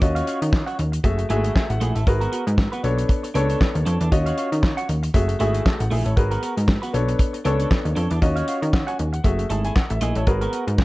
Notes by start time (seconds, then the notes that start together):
0.01 D#2 C#4 F4 F#4 D#5, muted clean electric guitar stroke, kick, closed hi-hat
0.15 F#4 C#5 F5, closed hi-hat
0.27 F#4 C#5 F5, closed hi-hat
0.41 D#3, muted clean electric guitar stroke, closed hi-hat
0.53 muted clean electric guitar stroke, kick, snare, clap
0.67 F#4 C#5 F#5, closed hi-hat
0.78 D#2, muted clean electric guitar stroke, closed hi-hat
0.92 muted clean electric guitar stroke, closed hi-hat
1.04 F#1 A3 F#4 G#4 E5, muted clean electric guitar stroke, kick, closed hi-hat
1.18 muted clean electric guitar stroke, closed hi-hat
1.29 G#1 G#3 A3 E4 F#4 G#4 E5 G#5, closed hi-hat
1.36 A3
1.44 A3 E4 G#4, closed hi-hat
1.55 E5 G#5, muted clean electric guitar stroke, kick, snare, clap
1.69 A1 F#5, muted clean electric guitar stroke, closed hi-hat
1.80 A#1 A3 E4 G#4, closed hi-hat
1.95 A1 A3 E4 A4 E5, closed hi-hat
2.06 G#1 F#4 G#4 A#4 B4, muted clean electric guitar stroke, kick, closed hi-hat
2.21 B3 F#4 A#4, closed hi-hat
2.32 B3 F#4 A#4, closed hi-hat
2.47 G#2, closed hi-hat
2.58 muted clean electric guitar stroke, kick, snare, clap
2.72 B3 F#4 B4, closed hi-hat
2.83 B1 B3 D4 A4 C#5, muted clean electric guitar stroke, closed hi-hat
2.98 muted clean electric guitar stroke, closed hi-hat
3.09 muted clean electric guitar stroke, kick, closed hi-hat
3.23 muted clean electric guitar stroke, closed hi-hat
3.34 C#2 B3 D4 A4 C#5, closed hi-hat
3.49 D4 A4 C#5, closed hi-hat
3.60 muted clean electric guitar stroke, kick, snare, clap
3.75 D#2, muted clean electric guitar stroke, closed hi-hat
3.86 F2 D4 A4 C#5, closed hi-hat
4.00 E2 D4 A4 D5, closed hi-hat
4.12 D#2 C#4 F4 F#4 D#5, muted clean electric guitar stroke, kick, closed hi-hat
4.26 F#4 C#5 F5, closed hi-hat
4.37 F#4 C#5 F5, closed hi-hat
4.52 D#3, closed hi-hat
4.63 muted clean electric guitar stroke, kick, snare, clap
4.77 F#4 C#5 F#5, closed hi-hat
4.88 D#2, muted clean electric guitar stroke, closed hi-hat
5.03 muted clean electric guitar stroke, closed hi-hat
5.14 F#1 A3 F#4 G#4 E5, muted clean electric guitar stroke, kick, closed hi-hat
5.28 muted clean electric guitar stroke, closed hi-hat
5.39 G#1 A3 E4 F#4 G#4 E5, closed hi-hat
5.54 A3 E4 G#4, closed hi-hat
5.66 A5, kick, snare, clap
5.79 A1 F#5, muted clean electric guitar stroke, closed hi-hat
5.91 A#1 A3 E4 G#4 E5, open hi-hat
6.05 A1 A3 E4 A4 C#5, closed hi-hat
6.17 G#1 F#4 G#4 A#4 B4, kick, closed hi-hat
6.31 B3 F#4 A#4, closed hi-hat
6.42 B3 F#4 A#4, closed hi-hat
6.57 G#2, closed hi-hat
6.68 muted clean electric guitar stroke, kick, snare, clap
6.82 B3 F#4 B4, closed hi-hat
6.93 B1 B3 D4 A4 C#5, muted clean electric guitar stroke, closed hi-hat
7.08 muted clean electric guitar stroke, closed hi-hat
7.19 muted clean electric guitar stroke, kick, closed hi-hat
7.33 muted clean electric guitar stroke, closed hi-hat
7.45 C#2 B3 D4 A4 C#5, closed hi-hat
7.59 D4 A4 C#5, closed hi-hat
7.70 muted clean electric guitar stroke, kick, snare, clap
7.85 D#2, muted clean electric guitar stroke, closed hi-hat
7.96 F2 D4 A4 C#5, closed hi-hat
8.10 E2 D4 A4 D5, closed hi-hat
8.21 D#2 C#4 F4 F#4 D#5, muted clean electric guitar stroke, kick, closed hi-hat
8.36 F#4 C#5 F5, closed hi-hat
8.47 F#4 C#5 F5, closed hi-hat
8.61 D#3, muted clean electric guitar stroke, closed hi-hat
8.73 F#5, muted clean electric guitar stroke, kick, snare, clap
8.87 F#4 C#5 F#5 G#5, closed hi-hat
8.98 D#2, muted clean electric guitar stroke, closed hi-hat
9.13 F#5, muted clean electric guitar stroke, closed hi-hat
9.24 F#1 A3 F#4 G#4 E5, muted clean electric guitar stroke, kick, closed hi-hat
9.39 muted clean electric guitar stroke, closed hi-hat
9.50 G#1 A3 E4 G#4 A5, closed hi-hat
9.65 A3 E4 G#4 G#5, closed hi-hat
9.76 F#5, kick, snare, clap
9.90 A1 E5, muted clean electric guitar stroke, closed hi-hat
10.01 A#1 A3 E4 G#4 D#5, closed hi-hat
10.15 A1 A3 E4 A4 C#5, closed hi-hat
10.27 G#1 F#4 G#4 A#4 B4, kick, closed hi-hat
10.41 B3 F#4 A#4, closed hi-hat
10.52 B3 F#4 A#4, closed hi-hat
10.67 G#2, muted clean electric guitar stroke, closed hi-hat
10.78 muted clean electric guitar stroke, kick, snare, clap